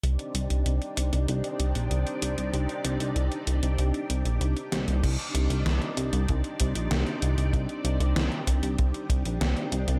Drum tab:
CC |----------------|----------------|x---------------|----------------|
HH |xxxxxxxxxxxxxxxx|xxxxxxxxxxxxxxxx|xxxxxxxxxxxxxxxx|xxxxxxxxxxxxxxxx|
SD |----------------|--------------o-|----o-------o---|----o-------o---|
BD |----------------|----------------|o-------o-o-----|o-----o-o-o-----|